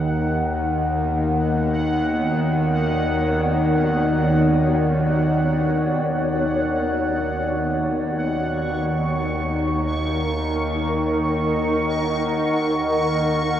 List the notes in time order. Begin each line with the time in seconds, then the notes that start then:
Already playing: D#2 D#3 D#4 D#5 F#5 A#5
0.39 B3
0.76 C#5
1.00 F#4
1.63 D5
8.50 D#4 C#6
9.11 A#4
10.04 D#5
10.64 F#5